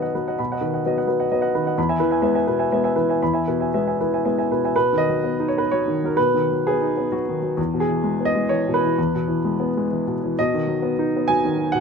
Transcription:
0.00 0.35 B2 soft
0.00 0.41 D#3 soft
0.00 0.15 F#3 soft
0.00 0.41 B3 soft
0.00 0.15 B4 soft
0.00 0.02 D#5 soft
0.00 0.14 D#5 soft
0.00 0.02 F#5 soft
0.00 0.13 F#5 soft
0.15 0.53 F#3 soft
0.15 0.34 B4 soft
0.28 0.38 D#5 soft
0.28 0.38 F#5 soft
0.39 1.74 B2 soft
0.39 0.57 B5 soft
0.52 0.62 D#5 soft
0.52 0.62 F#5 soft
0.61 0.98 D#3 soft
0.61 0.80 B4 soft
0.74 0.84 D#5 soft
0.74 0.84 F#5 soft
0.86 1.06 F#3 soft
0.86 1.06 B3 soft
0.86 0.96 D#5 soft
0.97 1.07 D#5 soft
0.97 1.08 F#5 soft
1.07 1.30 F#3 soft
1.07 1.26 B4 soft
1.20 1.30 D#5 soft
1.20 1.30 F#5 soft
1.32 1.52 F#3 soft
1.32 1.53 B3 soft
1.32 1.40 D#5 soft
1.41 1.52 D#5 soft
1.41 1.53 F#5 soft
1.55 1.78 D#3 soft
1.55 1.73 B4 soft
1.66 1.77 D#5 soft
1.66 1.77 F#5 soft
1.78 3.17 E2 medium
1.78 1.96 B5 medium
1.89 1.99 E5 soft
1.89 1.99 G#5 medium
2.00 2.37 E3 soft
2.00 2.18 B4 medium
2.11 2.21 E5 soft
2.11 2.22 G#5 soft
2.22 2.44 G#3 soft
2.22 2.45 B3 soft
2.22 2.34 E5 medium
2.35 2.46 E5 soft
2.35 2.46 G#5 soft
2.47 2.86 B2 soft
2.47 2.66 B4 soft
2.59 2.70 E5 soft
2.59 2.70 G#5 soft
2.72 2.94 G#3 soft
2.72 2.94 B3 soft
2.72 2.83 E5 soft
2.84 2.95 E5 soft
2.84 2.95 G#5 soft
2.96 3.37 E3 soft
2.96 3.16 B4 soft
3.09 3.20 E5 soft
3.09 3.21 G#5 soft
3.22 4.72 E2 medium
3.22 3.42 B5 medium
3.34 3.45 E5 soft
3.34 3.46 G#5 soft
3.48 3.89 B2 soft
3.48 3.68 B4 soft
3.60 3.72 E5 soft
3.60 3.73 G#5 soft
3.74 3.97 G#3 soft
3.74 3.97 B3 soft
3.74 3.86 E5 soft
3.87 3.98 E5 soft
3.87 3.98 G#5 soft
4.00 4.40 E3 soft
4.00 4.20 B4 soft
4.13 4.24 E5 soft
4.13 4.24 G#5 soft
4.25 4.48 G#3 soft
4.25 4.48 B3 soft
4.25 4.37 E5 soft
4.38 4.49 E5 soft
4.38 4.49 G#5 soft
4.51 4.75 B2 soft
4.51 4.71 B4 soft
4.65 4.75 E5 soft
4.65 4.75 G#5 soft
4.76 6.14 B2 soft
4.76 5.00 B4 medium
4.93 5.18 D#3 soft
4.98 5.46 D#5 medium
5.09 5.34 F#3 soft
5.24 5.49 B3 soft
5.40 5.64 D#4 soft
5.48 5.59 C#5 medium
5.57 5.81 B3 soft
5.57 5.70 B4 medium
5.71 5.96 F#3 soft
5.71 6.06 C#5 medium
5.88 6.12 D#3 soft
6.04 6.27 F#3 soft
6.04 6.17 A#4 medium
6.17 7.55 B2 medium
6.17 6.64 B4 medium
6.34 6.59 D#3 soft
6.51 6.75 F#3 soft
6.67 6.91 B3 soft
6.67 7.13 G#4 medium
6.81 7.06 D#4 soft
6.97 7.21 B3 soft
7.12 7.37 F#3 soft
7.12 7.58 F#4 medium
7.29 7.53 D#3 soft
7.42 7.58 F#3 soft
7.57 8.93 E2 medium
7.74 7.98 B2 soft
7.80 8.27 G#4 medium
7.89 8.13 E3 soft
8.04 8.29 G#3 soft
8.20 8.45 B3 soft
8.25 8.50 D#5 medium
8.35 8.60 G#3 soft
8.49 8.76 E3 soft
8.49 8.73 C#5 medium
8.68 8.92 B2 soft
8.74 10.14 B4 medium
8.85 9.08 E3 soft
8.98 10.34 E2 medium
9.15 9.38 B2 soft
9.28 9.53 E3 soft
9.45 9.69 G#3 soft
9.60 9.84 B3 soft
9.77 10.01 G#3 soft
9.91 10.16 E3 soft
10.08 10.32 B2 soft
10.24 10.38 E3 soft
10.39 11.73 B2 medium
10.39 11.30 D#5 medium
10.54 10.78 D#3 soft
10.67 10.92 F#3 soft
10.82 11.08 B3 soft
10.99 11.24 D#4 soft
11.17 11.40 B3 soft
11.28 11.54 F#3 soft
11.28 11.75 G#5 loud
11.45 11.69 D#3 soft
11.58 11.80 F#3 soft
11.72 11.80 B2 medium
11.72 11.80 F#5 medium

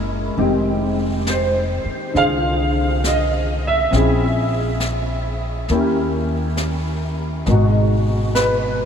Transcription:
0.00 0.32 F#1 medium
0.00 0.35 G#3 medium
0.00 0.37 A#3 soft
0.00 0.38 C#4 soft
0.00 0.38 E4 medium
0.37 1.80 F1 medium
0.37 3.91 D#3 soft
0.37 3.91 G#3 soft
0.37 3.89 C4 soft
0.37 3.92 G4 medium
0.37 brush sweep soft
1.27 2.18 C5 medium
1.27 snare soft
1.27 hi-hat pedal soft
1.85 muted upright bass stroke soft
2.13 3.87 C2 medium
2.13 3.91 D3 soft
2.13 3.91 F4 soft
2.13 3.92 G#4 soft
2.13 3.06 F5 medium
2.13 brush sweep soft
2.13 snare soft
3.04 3.64 D#5 medium
3.04 snare soft
3.04 hi-hat pedal medium
3.67 5.37 E5 medium
3.91 5.65 A#1 medium
3.91 5.68 C4 soft
3.91 5.69 C#4 soft
3.91 5.70 E4 soft
3.91 brush sweep soft
3.91 snare soft
3.96 5.71 G#4 soft
4.80 snare soft
4.80 hi-hat pedal soft
5.68 7.43 D#2 medium
5.68 7.47 A#3 soft
5.68 7.47 C#4 soft
5.68 7.47 E4 soft
5.68 7.48 G4 soft
5.68 brush sweep soft
5.68 snare soft
6.57 snare soft
6.57 hi-hat pedal soft
7.46 8.85 G#1 medium
7.46 8.85 B2 soft
7.46 8.85 G#3 soft
7.46 8.85 D#4 soft
7.46 brush sweep soft
7.46 snare soft
7.51 8.85 F#4 soft
8.35 8.85 B4 medium
8.35 snare soft
8.35 hi-hat pedal soft

